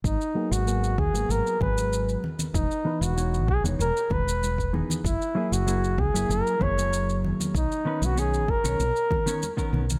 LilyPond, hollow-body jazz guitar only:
\new Staff \with { instrumentName = "Hollow-body jazz guitar" } { \time 4/4 \key gis \minor \tempo 4 = 96 r8 <fis ais b gis'>8 <fis ais b gis'>8 r16 <fis ais b gis'>8. <fis gis b gis'>4 r8 | r8 <e b dis' b'>8 <e b dis' cis''>8 r16 <e b dis' cis''>16 r4. <e b dis' gis'>8 | r8 <fis ais e' gis'>8 <fis ais e' gis'>8 r16 <fis ais e' gis'>8. <fis ais e' gis'>4. | r8 <dis b cis' b'>8 <dis b cis' cis''>8 r16 <dis b cis' cis''>16 r8. <dis b cis' cis''>16 r16 <dis b cis' ais'>8 r16 | }